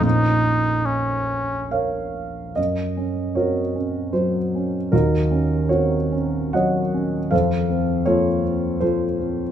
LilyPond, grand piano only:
\new Staff \with { instrumentName = "Grand piano" } { \time 3/4 \key ges \lydian \tempo 4 = 76 << { r2 <bes' des'' f''>4 | ees''4 <ges' bes' des''>4 c''4 | <ees' ges' bes'>4 <ges' bes' des''>4 <des'' ees'' ges''>4 | <a' c'' f''>4 <f' a' des''>4 <f' a' c''>4 | } \\ { <bes,, f bes des'>2. | ges,8 des'8 c'8 des'8 ges8 des'8 | ees,8 des'8 c'8 des'8 ges8 des'8 | f,8 c'8 bes8 c'8 f8 c'8 | } >> }